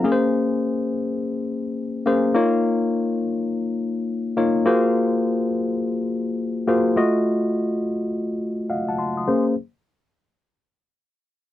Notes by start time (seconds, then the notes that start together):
0.04 A#3 C#4 G#4 A#4
0.12 C5
2.06 A#3 C#4 G#4 C5
2.35 A#3 D#4 F4 C#5
4.37 A#3 D#4 F4 C#5
4.66 A#3 F4 F#4 G#4 C5
6.67 A#3 F4 F#4 G#4 C5
6.96 A3 F4 F#4 D#5
8.70 D#5 F5 F#5
8.89 F#5 A5
8.99 A5 C6
9.17 C6 D#6
9.28 A#3 C#4 G#4 C5